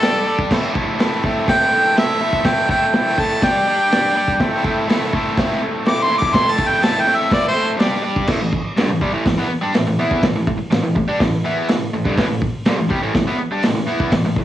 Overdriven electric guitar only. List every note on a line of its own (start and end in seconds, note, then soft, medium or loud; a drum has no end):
0.02 0.26 G3 loud
0.02 0.27 D4 loud
0.02 0.27 G4 loud
0.02 0.27 D5 loud
0.27 0.50 G3 medium
0.27 0.50 D4 medium
0.27 0.51 G4 loud
0.27 0.51 D5 loud
0.51 0.74 A3 loud
0.51 0.75 C4 loud
0.51 0.75 E4 loud
0.51 0.75 A4 loud
0.75 0.98 A3 medium
0.75 0.98 C4 medium
0.75 0.99 E4 medium
0.75 0.99 A4 medium
0.99 1.23 A3 medium
0.99 1.23 C4 medium
0.99 1.24 E4 loud
0.99 1.24 A4 medium
1.24 1.45 A3 medium
1.24 1.46 C4 medium
1.24 1.47 E4 medium
1.24 1.47 A4 medium
1.46 1.71 A3 loud
1.46 1.71 C4 loud
1.46 1.72 E4 loud
1.46 1.72 A4 loud
1.72 1.95 A3 medium
1.72 1.96 C4 medium
1.72 1.96 E4 loud
1.72 1.96 A4 loud
1.96 2.19 A3 medium
1.96 2.19 C4 medium
1.96 2.20 E4 loud
1.96 2.21 A4 loud
2.20 2.44 A3 medium
2.20 2.45 C4 medium
2.20 2.45 E4 loud
2.20 2.45 A4 loud
2.45 2.68 A3 medium
2.45 2.69 C4 loud
2.45 2.70 E4 loud
2.45 2.69 A4 loud
2.69 2.93 A3 medium
2.69 2.94 C4 medium
2.69 2.94 E4 medium
2.69 2.94 A4 medium
2.94 3.17 A3 medium
2.94 3.17 C4 loud
2.94 3.18 E4 loud
2.94 3.18 A4 loud
3.18 3.41 A3 medium
3.18 3.42 C4 medium
3.18 3.42 E4 medium
3.18 3.42 A4 medium
3.42 3.66 G3 loud
3.42 3.67 D4 loud
3.42 3.67 G4 loud
3.42 3.67 D5 loud
3.67 3.90 G3 loud
3.67 3.90 D4 medium
3.67 3.91 G4 loud
3.67 3.91 D5 loud
3.91 4.14 G3 loud
3.91 4.15 D4 loud
3.91 4.15 G4 loud
3.91 4.16 D5 loud
4.16 4.39 G3 medium
4.16 4.39 D4 medium
4.16 4.39 G4 loud
4.16 4.39 D5 loud
4.40 4.63 A3 medium
4.40 4.64 C4 loud
4.40 4.65 E4 loud
4.40 4.65 A4 loud
4.64 4.86 A3 medium
4.64 4.87 C4 medium
4.64 4.88 E4 loud
4.64 4.88 A4 medium
4.88 5.12 A3 medium
4.88 5.13 C4 medium
4.88 5.13 E4 loud
4.88 5.14 A4 loud
5.14 5.37 A3 medium
5.14 5.37 C4 medium
5.14 5.38 E4 loud
5.14 5.39 A4 medium
5.38 5.61 A3 medium
5.38 5.62 C4 loud
5.38 5.62 E4 loud
5.38 5.63 A4 loud
5.62 5.85 A3 loud
5.62 5.86 C4 loud
5.62 5.86 E4 medium
5.62 5.87 A4 loud
5.86 6.08 A3 medium
5.86 6.09 C4 medium
5.86 6.10 E4 loud
5.86 6.10 A4 loud
6.09 6.33 A3 medium
6.09 6.34 C4 medium
6.09 6.34 E4 loud
6.09 6.35 A4 loud
6.34 6.57 A3 loud
6.34 6.57 C4 medium
6.34 6.58 E4 loud
6.34 6.58 A4 loud
6.58 6.81 A3 medium
6.58 6.81 C4 medium
6.58 6.82 E4 medium
6.58 6.83 A4 medium
6.83 7.06 A3 medium
6.83 7.07 C4 medium
6.83 7.07 E4 loud
6.83 7.07 A4 loud
7.07 7.30 A3 medium
7.07 7.30 C4 medium
7.07 7.30 E4 medium
7.07 7.31 A4 loud
7.31 7.53 A3 loud
7.31 7.54 C4 loud
7.31 7.55 E4 loud
7.31 7.54 A4 loud
7.54 7.78 A3 medium
7.54 7.78 C4 medium
7.54 7.79 E4 loud
7.54 7.79 A4 loud
7.78 8.02 G3 loud
7.78 8.02 D4 loud
7.78 8.03 G4 loud
7.78 8.03 D5 loud
8.03 8.27 G3 loud
8.03 8.27 D4 medium
8.03 8.27 G4 loud
8.03 8.27 D5 loud
8.28 8.40 A2 loud
8.28 8.40 E3 loud
8.41 8.61 A2 medium
8.41 8.61 E3 medium
8.77 8.89 G2 loud
8.77 8.89 D3 loud
8.90 9.01 A2 medium
8.90 9.02 E3 medium
9.01 9.13 C3 medium
9.01 9.13 G3 loud
9.13 9.25 A2 loud
9.13 9.25 E3 loud
9.26 9.37 A2 medium
9.26 9.36 E3 medium
9.37 9.49 E3 loud
9.37 9.50 B3 loud
9.50 muted overdriven electric guitar stroke medium
9.62 9.74 G3 medium
9.62 9.74 D4 loud
9.74 9.86 A2 medium
9.74 9.86 E3 medium
9.87 9.99 A2 medium
9.87 9.98 E3 medium
9.99 10.23 E3 medium
9.99 10.23 B3 loud
9.99 10.23 E4 loud
10.23 10.35 A2 medium
10.23 10.35 E3 medium
10.36 10.46 A2 medium
10.36 10.46 E3 medium
10.47 10.57 A2 medium
10.47 10.60 E3 medium
10.59 muted overdriven electric guitar stroke medium
10.71 10.82 A2 medium
10.71 10.82 E3 medium
10.83 10.94 A2 medium
10.83 10.95 E3 medium
10.95 11.08 A2 medium
10.95 11.08 E3 medium
11.08 11.20 G3 loud
11.08 11.20 D4 loud
11.20 11.40 A2 medium
11.20 11.40 E3 medium
11.44 11.68 E3 loud
11.44 11.69 B3 loud
11.44 11.69 E4 loud
11.69 11.88 A2 medium
11.69 11.89 E3 medium
11.93 12.06 A2 medium
11.93 12.06 E3 medium
12.05 12.17 G2 loud
12.05 12.17 D3 loud
12.17 12.28 A2 loud
12.17 12.28 E3 loud
12.29 12.49 A2 medium
12.29 12.49 E3 medium
12.66 12.78 G2 loud
12.66 12.78 D3 loud
12.78 12.89 A2 medium
12.78 12.90 E3 medium
12.89 13.01 C3 medium
12.89 13.02 G3 loud
13.02 13.13 A2 loud
13.02 13.14 E3 loud
13.14 13.27 A2 medium
13.14 13.26 E3 medium
13.27 13.39 E3 loud
13.27 13.39 B3 loud
13.40 muted overdriven electric guitar stroke medium
13.52 13.63 G3 medium
13.52 13.63 D4 loud
13.63 13.74 A2 medium
13.63 13.74 E3 medium
13.75 13.86 A2 medium
13.75 13.86 E3 medium
13.87 14.11 E3 medium
13.87 14.12 B3 loud
13.87 14.12 E4 loud
14.13 14.24 A2 medium
14.13 14.24 E3 medium
14.25 14.37 A2 medium
14.25 14.37 E3 medium
14.38 14.45 A2 medium
14.38 14.45 E3 medium